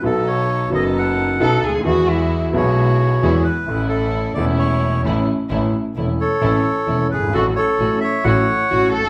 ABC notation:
X:1
M:4/4
L:1/16
Q:1/4=132
K:A
V:1 name="Bandoneon"
A2 c4 ^d2 f6 z2 | z6 c8 B2- | B2 A4 d2 c4 z4 | z6 [Ac]8 [GB]2 |
[FA]2 [Ac]4 [ce]2 [cf]6 z2 |]
V:2 name="Cello"
z12 A2 G2 | F2 E3 z8 z3 | z16 | z16 |
z12 F2 A2 |]
V:3 name="String section"
[B,^DA]6 [B,DA]6 [B,DA]2 z2 | [G,EF]6 [G,EF]6 [G,EF]2 z2 | [A,CE]6 [A,CE]6 [A,CE]2 z2 | [A,CE]2 z2 [A,CE]2 z2 [A,CE]2 z2 [A,CE]2 z2 |
[A,CF]2 z2 [A,CF]2 z2 [A,CF]2 z2 [A,CF]2 z2 |]
V:4 name="Grand piano" clef=bass
[B,,,B,,F,B,^DA]6 [F,,,F,,F,B,DA]6 [B,,,B,,F,B,DA]2 z/2 C,,/2 =D,,/2 ^D,,/2 | [E,,E,F,B,EG]6 [B,,,B,,F,B,EG]6 [E,,E,F,B,EG]2 z2 | [A,,,A,,E,A,CA]6 [E,,,E,,E,A,CA]6 [A,,,A,,E,A,CA]2 z2 | [A,,,A,,E,A,CA]2 z2 [E,,,E,,E,A,CA]2 z2 [A,,,A,,E,A,CA]2 z2 [E,,,E,,E,A,CA]2 z/2 F,,,/2 =G,,,/2 ^G,,,/2 |
[A,,,A,,F,A,CA]2 z2 [A,,,A,,F,A,CA]2 z2 [A,,,A,,F,A,CA]2 z2 [A,,,A,,F,A,CA]2 z/2 G,,,/2 z |]
V:5 name="Double bass" clef=bass
B,,,6 F,,,6 B,,,2 D,,2 | E,,6 B,,,6 E,,2 z2 | A,,,6 E,,,6 A,,,2 z2 | A,,,2 z2 E,,,2 z2 A,,,2 z2 E,,,2 =G,,,2 |
A,,,2 z2 A,,,2 z2 A,,,2 z2 A,,,2 A,,,2 |]